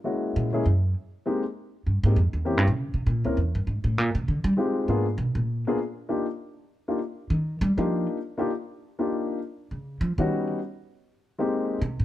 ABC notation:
X:1
M:4/4
L:1/8
Q:"Swing" 1/4=199
K:Eb
V:1 name="Upright piano"
[A,B,_D_F_G]3 [A,B,DFA] z4 | [A,B,CEG] z4 [A,B,CEG] z2 | [B,C_D=EG] z4 [B,CDEB] z2 | z6 [A,CEFG]2 |
[B,_CDFA] z4 [B,CDFA] z2 | [B,DEFG] z4 [B,DEFG] z2 | z3 [B,DEFG]3 z [B,DEFG] | z3 [B,DEFG]3 z2 |
z3 [G,_C_DE_G]3 z2 | z3 [A,B,CEG]3 z2 |]
V:2 name="Upright bass" clef=bass
z2 B,,2 _G,,2 z2 | z4 G,, A,, F,, E,, | (3=E,, G,, B,, _D, C, B,, _D,, E,, G,, | A,, =A,, B,, C, D, G, z2 |
A,,2 _C, B,,2 z3 | z8 | E,2 G, F,2 z3 | z8 |
_D,2 F, E,2 z3 | z6 C, =A,, |]